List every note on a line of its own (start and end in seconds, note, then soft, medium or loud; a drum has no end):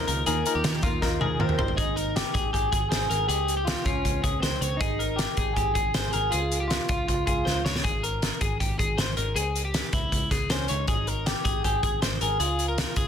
0.00 0.08 D#4 loud
0.00 0.08 F4 loud
0.00 0.09 A#4 loud
0.00 1.79 C5 loud
0.07 0.23 C#2 medium
0.07 0.25 D#4 medium
0.07 0.26 D#4 soft
0.07 0.25 F4 medium
0.07 0.27 F4 soft
0.07 0.26 A#4 medium
0.07 closed hi-hat medium
0.26 0.42 D#2 loud
0.26 0.45 D#3 medium
0.26 0.46 A#3 medium
0.26 0.44 D#4 loud
0.26 0.46 D#4 medium
0.26 0.44 F4 medium
0.26 0.46 F4 medium
0.26 0.53 G#4 medium
0.26 0.44 A#4 loud
0.26 0.44 A#4 medium
0.26 closed hi-hat medium
0.45 0.63 D#4 loud
0.45 0.63 D#4 soft
0.45 0.63 F4 medium
0.45 0.63 F4 soft
0.45 0.64 A#4 medium
0.45 0.63 A#4 loud
0.45 closed hi-hat medium
0.55 0.63 D#2 medium
0.55 0.82 G4 medium
0.63 0.80 D#2 medium
0.63 0.82 D#3 medium
0.63 0.83 A#3 medium
0.63 0.83 D#4 medium
0.63 0.81 F4 medium
0.63 0.83 F4 medium
0.63 0.82 G4 medium
0.63 0.81 A#4 medium
0.63 snare loud
0.63 closed hi-hat medium
0.82 0.99 D#2 loud
0.82 1.00 D#4 medium
0.82 1.01 D#4 medium
0.82 1.00 F4 medium
0.82 1.19 F4 medium
0.82 1.02 F4 soft
0.82 1.02 A#4 medium
0.82 1.01 A#4 medium
0.82 kick medium
0.82 closed hi-hat medium
1.01 1.18 D#2 medium
1.01 1.20 A#3 medium
1.01 1.19 D#4 medium
1.01 1.21 D#4 medium
1.01 1.20 F4 medium
1.01 1.20 A#4 loud
1.01 1.18 A#4 medium
1.01 kick medium
1.01 snare soft
1.19 1.36 D#2 medium
1.19 1.38 D#4 medium
1.19 1.39 D#4 soft
1.19 1.38 F4 medium
1.19 1.40 F4 medium
1.19 1.40 G#4 medium
1.19 1.39 A#4 medium
1.19 high tom medium
1.39 1.55 D#2 loud
1.39 1.58 D#3 medium
1.39 1.59 A#3 medium
1.39 1.76 C4 medium
1.39 1.59 D#4 medium
1.39 1.58 D#4 loud
1.39 1.58 F4 loud
1.39 1.58 F4 medium
1.39 1.58 A#4 medium
1.39 1.57 A#4 medium
1.39 1.58 A#4 loud
1.39 mid tom medium
1.49 mid tom medium
1.58 1.74 G1 medium
1.58 1.77 D#4 medium
1.58 1.79 D#4 soft
1.58 1.78 F4 soft
1.58 1.77 F4 medium
1.58 1.78 A#4 soft
1.58 1.77 A#4 medium
1.58 1.77 C5 medium
1.58 floor tom loud
1.68 floor tom medium
1.76 2.23 G#1 medium
1.76 2.16 D#4 medium
1.76 1.96 G#4 medium
1.76 kick medium
1.76 closed hi-hat medium
1.96 2.32 A#4 medium
1.96 closed hi-hat medium
2.16 2.53 G4 medium
2.16 snare medium
2.16 closed hi-hat medium
2.34 2.50 G#1 medium
2.34 2.53 G#4 medium
2.34 kick medium
2.34 closed hi-hat medium
2.53 2.69 G#1 medium
2.53 2.72 G4 medium
2.53 2.88 G#4 medium
2.53 kick medium
2.53 closed hi-hat medium
2.72 2.88 G#1 medium
2.72 2.90 G#4 medium
2.72 kick medium
2.72 closed hi-hat medium
2.89 3.07 G#1 medium
2.89 3.08 G#4 medium
2.89 3.09 C5 medium
2.89 snare medium
2.89 closed hi-hat medium
3.09 3.26 G#1 medium
3.09 3.27 G#4 medium
3.09 3.28 A#4 medium
3.09 closed hi-hat medium
3.27 3.74 C#2 medium
3.27 3.64 G4 medium
3.27 3.56 G#4 medium
3.27 closed hi-hat medium
3.48 closed hi-hat medium
3.57 3.84 G4 medium
3.65 3.86 F4 medium
3.65 snare medium
3.65 closed hi-hat medium
3.84 4.01 C#2 medium
3.84 4.21 C#4 medium
3.84 4.22 F4 medium
3.84 kick medium
3.84 closed hi-hat medium
4.05 4.21 C#2 loud
4.05 kick medium
4.05 closed hi-hat medium
4.22 4.39 C#2 medium
4.22 4.40 C#4 medium
4.22 4.42 G#4 medium
4.22 kick medium
4.22 closed hi-hat medium
4.40 4.58 C#2 medium
4.40 4.77 C4 medium
4.40 4.61 C5 medium
4.40 snare medium
4.40 closed hi-hat medium
4.61 4.77 C#2 medium
4.61 4.81 C#5 medium
4.61 closed hi-hat medium
4.77 5.26 G#1 medium
4.77 5.14 D#4 medium
4.77 5.00 G#4 medium
4.77 kick loud
4.77 closed hi-hat medium
4.99 5.35 A#4 medium
4.99 closed hi-hat medium
5.16 5.53 G4 medium
5.16 snare medium
5.16 closed hi-hat medium
5.37 5.53 G#1 medium
5.37 5.56 G#4 medium
5.37 kick medium
5.37 closed hi-hat medium
5.54 5.72 G#1 medium
5.54 5.75 G4 medium
5.54 6.09 G#4 medium
5.54 kick medium
5.54 closed hi-hat medium
5.75 5.91 G#1 medium
5.75 5.94 G#4 medium
5.75 kick medium
5.75 closed hi-hat medium
5.94 6.10 G#1 medium
5.94 6.13 C5 medium
5.94 snare medium
5.94 closed hi-hat medium
6.11 6.29 G#1 medium
6.11 6.30 G#4 medium
6.11 6.33 A#4 medium
6.11 closed hi-hat medium
6.30 6.78 C#2 medium
6.30 6.67 F4 medium
6.30 6.59 G#4 medium
6.30 closed hi-hat medium
6.51 closed hi-hat medium
6.60 6.87 G4 medium
6.68 6.87 F4 medium
6.68 snare medium
6.68 closed hi-hat medium
6.88 7.05 C#2 medium
6.88 7.06 F4 medium
6.88 7.25 F4 medium
6.88 kick medium
6.88 closed hi-hat medium
7.08 7.24 C#2 medium
7.08 7.25 F4 medium
7.08 kick medium
7.08 closed hi-hat medium
7.26 7.43 C#2 medium
7.26 7.62 F4 medium
7.26 7.46 G#4 medium
7.26 kick medium
7.26 closed hi-hat medium
7.45 7.62 C#2 medium
7.45 7.64 C5 medium
7.45 snare soft
7.65 7.81 C#2 medium
7.65 7.84 C#5 medium
7.65 snare medium
7.76 snare medium
7.84 8.30 G#1 medium
7.84 8.03 G#4 medium
7.84 kick medium
7.84 closed hi-hat medium
8.03 8.39 A#4 medium
8.03 closed hi-hat medium
8.22 snare medium
8.22 closed hi-hat medium
8.41 8.57 G#1 medium
8.41 8.60 G#4 medium
8.41 kick medium
8.41 closed hi-hat medium
8.60 8.76 G#1 medium
8.60 8.79 G4 medium
8.60 kick medium
8.60 closed hi-hat medium
8.79 8.95 G#1 medium
8.79 8.98 G#4 medium
8.79 kick medium
8.79 closed hi-hat medium
8.98 9.14 G#1 medium
8.98 9.17 C5 medium
8.98 snare medium
8.98 closed hi-hat medium
9.17 9.33 G#1 medium
9.17 9.36 A#4 medium
9.17 closed hi-hat medium
9.35 9.81 C#2 medium
9.35 9.63 G#4 medium
9.35 closed hi-hat medium
9.55 closed hi-hat medium
9.65 9.92 G4 medium
9.74 snare medium
9.74 closed hi-hat medium
9.93 10.09 C#2 medium
9.93 10.29 E4 medium
9.93 kick medium
9.93 closed hi-hat medium
10.12 10.28 C#2 medium
10.12 kick medium
10.12 closed hi-hat medium
10.31 10.47 C#2 medium
10.31 10.50 G#4 medium
10.31 kick medium
10.31 snare soft
10.31 closed hi-hat medium
10.50 10.66 C#2 medium
10.50 10.70 C#4 medium
10.50 10.69 C5 medium
10.50 snare loud
10.50 closed hi-hat medium
10.68 10.85 C#2 medium
10.68 11.28 D#4 medium
10.68 10.88 C#5 medium
10.68 closed hi-hat medium
10.88 11.33 G#1 medium
10.88 11.08 G#4 medium
10.88 kick medium
10.88 closed hi-hat medium
11.07 11.43 A#4 medium
11.07 closed hi-hat soft
11.26 11.61 G4 medium
11.26 snare loud
11.26 closed hi-hat medium
11.45 11.60 G#1 medium
11.45 11.64 G#4 medium
11.45 kick medium
11.45 closed hi-hat medium
11.64 11.80 G#1 medium
11.64 11.83 G4 medium
11.64 11.99 G#4 medium
11.64 kick medium
11.64 closed hi-hat medium
11.83 11.98 G#1 medium
11.83 12.02 G#4 medium
11.83 kick medium
11.83 closed hi-hat medium
12.02 12.18 G#1 medium
12.02 12.21 C5 medium
12.02 snare medium
12.02 closed hi-hat medium
12.21 12.36 G#1 medium
12.21 12.40 G#4 medium
12.21 12.40 A#4 medium
12.21 closed hi-hat medium
12.39 12.84 C#2 medium
12.39 13.08 F4 medium
12.39 12.66 G#4 medium
12.39 closed hi-hat medium
12.59 closed hi-hat soft
12.68 12.95 A#4 medium
12.78 snare medium
12.78 closed hi-hat medium
12.96 13.08 C#2 medium
12.96 13.08 G#4 medium
12.96 kick medium
12.96 closed hi-hat medium